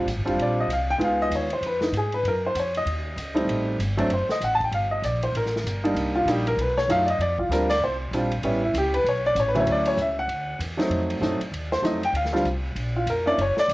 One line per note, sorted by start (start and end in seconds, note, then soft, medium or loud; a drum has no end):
0.06 0.16 A1 medium
0.06 hi-hat pedal medium
0.06 ride medium
0.16 0.25 G1 medium
0.25 0.36 F1 medium
0.25 0.66 G3 medium
0.25 0.66 C4 medium
0.25 0.66 D4 medium
0.25 0.67 F4 medium
0.25 ride soft
0.37 0.67 A#1 medium
0.37 ride medium
0.42 0.58 D5 medium
0.60 0.70 D#5 medium
0.68 0.98 C2 medium
0.68 hi-hat pedal soft
0.68 ride medium
0.73 0.89 F5 medium
0.90 1.01 G5 loud
0.98 1.30 C#2 medium
0.98 1.45 G#3 medium
0.98 1.46 B3 medium
0.98 1.46 D#4 medium
0.98 1.46 F4 medium
0.98 ride soft
1.04 1.20 F5 medium
1.22 1.32 D#5 loud
1.30 1.60 D#2 medium
1.30 hi-hat pedal medium
1.30 ride medium
1.36 1.52 C#5 medium
1.50 1.63 C5 medium
1.50 ride soft
1.61 1.91 F2 medium
1.61 ride medium
1.66 1.83 B4 medium
1.81 1.94 D#4 medium
1.81 snare medium
1.92 2.22 G#2 medium
1.92 hi-hat pedal medium
1.92 ride medium
1.97 2.13 G#4 medium
2.12 2.25 B4 medium
2.12 ride soft
2.23 2.54 F#2 medium
2.23 ride medium
2.28 2.44 A#4 medium
2.47 2.56 C5 medium
2.55 2.85 F2 medium
2.55 hi-hat pedal medium
2.55 ride medium
2.60 2.76 C#5 medium
2.75 3.46 D#5 loud
2.75 ride soft
2.85 3.16 D#2 medium
2.85 ride medium
3.16 3.46 C#2 medium
3.16 hi-hat pedal soft
3.16 ride medium
3.34 3.76 G3 medium
3.34 3.76 A3 medium
3.34 3.76 C4 medium
3.34 3.76 D#4 medium
3.34 ride soft
3.47 3.77 A1 medium
3.47 ride medium
3.78 4.08 G1 medium
3.78 hi-hat pedal medium
3.78 ride medium
3.97 4.08 F#3 medium
3.97 4.08 A3 medium
3.97 4.09 C4 medium
3.97 4.09 D4 medium
3.97 ride medium
4.08 4.27 F#1 medium
4.08 ride medium
4.13 4.30 C5 medium
4.28 4.42 D#5 medium
4.28 muted upright bass stroke soft
4.28 snare medium
4.40 4.71 A1 medium
4.40 4.52 F#5 medium
4.40 hi-hat pedal medium
4.40 ride medium
4.55 4.63 A5 loud
4.60 4.73 G5 medium
4.60 kick medium
4.60 ride soft
4.71 5.01 G1 medium
4.71 4.91 F5 medium
4.71 ride medium
4.91 5.03 D#5 medium
5.02 5.32 A#1 medium
5.02 5.22 D5 medium
5.02 hi-hat pedal medium
5.02 ride medium
5.23 5.34 C5 medium
5.23 ride soft
5.32 5.63 A1 medium
5.32 ride medium
5.37 5.93 A#4 medium
5.46 snare soft
5.56 snare soft
5.64 5.94 G1 medium
5.64 hi-hat pedal medium
5.64 ride medium
5.84 6.24 G3 medium
5.84 6.24 A#3 medium
5.84 6.25 D4 medium
5.84 6.24 D#4 medium
5.84 ride soft
5.94 6.25 C2 medium
5.94 ride medium
6.16 6.27 F4 loud
6.25 6.56 A#1 loud
6.25 6.44 G3 medium
6.25 6.44 A#3 medium
6.25 6.44 D4 medium
6.25 6.44 D#4 medium
6.25 hi-hat pedal medium
6.25 ride medium
6.30 6.47 G4 medium
6.47 6.58 A#4 medium
6.47 ride medium
6.57 6.87 B1 medium
6.57 ride medium
6.61 6.77 B4 medium
6.78 6.89 C#5 loud
6.78 snare soft
6.88 7.18 F#2 medium
6.88 7.06 F#3 medium
6.88 7.06 A3 medium
6.88 7.06 D#4 medium
6.88 7.06 F4 medium
6.88 7.08 F5 loud
6.88 hi-hat pedal medium
6.88 ride medium
7.08 7.20 D#5 medium
7.08 ride soft
7.18 7.48 F2 medium
7.18 7.39 D5 medium
7.18 ride medium
7.39 7.50 F4 medium
7.39 kick medium
7.49 7.80 D2 medium
7.49 7.67 G3 medium
7.49 7.68 C4 medium
7.49 7.68 D4 medium
7.49 7.68 F4 medium
7.49 7.70 A#4 medium
7.49 hi-hat pedal medium
7.49 ride medium
7.70 7.81 D5 loud
7.70 snare soft
7.70 ride medium
7.80 8.11 C2 medium
7.80 7.94 C5 medium
8.11 8.42 A#1 medium
8.11 8.30 G3 medium
8.11 8.30 C4 medium
8.11 8.30 D4 medium
8.11 hi-hat pedal soft
8.11 ride medium
8.15 8.31 F4 medium
8.32 ride medium
8.42 8.73 A1 medium
8.42 8.60 G3 medium
8.42 8.60 B3 medium
8.42 8.61 C#4 medium
8.42 8.61 E4 medium
8.42 ride medium
8.63 8.74 E4 medium
8.73 9.04 C#2 loud
8.73 hi-hat pedal medium
8.73 ride medium
8.78 8.94 G4 medium
8.94 9.05 B4 loud
8.94 ride medium
9.04 9.34 B1 medium
9.04 ride medium
9.09 9.25 C#5 medium
9.26 9.37 D5 loud
9.35 9.65 A1 loud
9.35 hi-hat pedal medium
9.35 ride medium
9.40 9.48 C#5 medium
9.48 9.57 B4 loud
9.54 9.95 D2 medium
9.54 9.95 F#3 medium
9.54 9.96 A3 medium
9.54 9.96 C#4 medium
9.54 9.96 E4 medium
9.54 ride soft
9.60 9.68 C#5 medium
9.66 9.96 D2 medium
9.66 ride medium
9.71 9.87 D5 medium
9.85 9.98 C#5 medium
9.85 ride medium
9.97 10.27 C#2 loud
9.97 hi-hat pedal medium
10.01 10.18 E5 medium
10.19 10.58 F#5 medium
10.28 10.58 D2 medium
10.28 ride medium
10.59 10.89 E2 medium
10.59 hi-hat pedal medium
10.59 ride medium
10.77 11.18 F#3 medium
10.77 11.19 A3 medium
10.77 11.19 C4 medium
10.77 11.19 D#4 medium
10.77 snare soft
10.77 ride soft
10.89 11.20 F2 medium
10.89 ride medium
11.10 ride medium
11.20 11.38 F#2 medium
11.20 11.38 F#3 medium
11.20 11.38 A3 medium
11.20 11.38 C4 soft
11.20 11.39 D#4 medium
11.20 hi-hat pedal medium
11.39 muted upright bass stroke soft
11.39 ride medium
11.51 11.82 D#2 medium
11.51 ride medium
11.72 11.83 C5 medium
11.72 snare soft
11.82 12.12 F2 medium
11.82 12.00 F#3 medium
11.82 12.00 A3 medium
11.82 12.00 C4 soft
11.82 12.01 D#4 medium
11.82 12.03 D#5 medium
11.82 hi-hat pedal soft
11.82 ride medium
12.03 12.15 G5 loud
12.03 ride soft
12.13 12.43 D2 medium
12.13 12.44 F5 medium
12.13 ride medium
12.25 snare soft
12.33 12.44 G3 medium
12.33 12.44 C4 medium
12.33 12.44 D4 medium
12.33 12.44 F4 medium
12.33 snare medium
12.44 12.74 C2 loud
12.44 hi-hat pedal medium
12.44 ride medium
12.75 13.06 A#1 medium
12.75 ride medium
12.96 13.07 F4 medium
13.06 13.36 F1 medium
13.06 13.27 A#4 medium
13.06 hi-hat pedal medium
13.06 ride medium
13.26 13.37 A#3 medium
13.26 13.37 C#4 medium
13.26 13.37 D4 medium
13.26 13.38 E4 medium
13.26 13.38 D5 loud
13.38 13.55 F#1 medium
13.38 13.58 C#5 medium
13.38 ride medium
13.56 13.70 D5 loud
13.56 muted upright bass stroke soft
13.56 snare medium
13.68 13.74 A#1 medium
13.68 hi-hat pedal medium
13.68 ride medium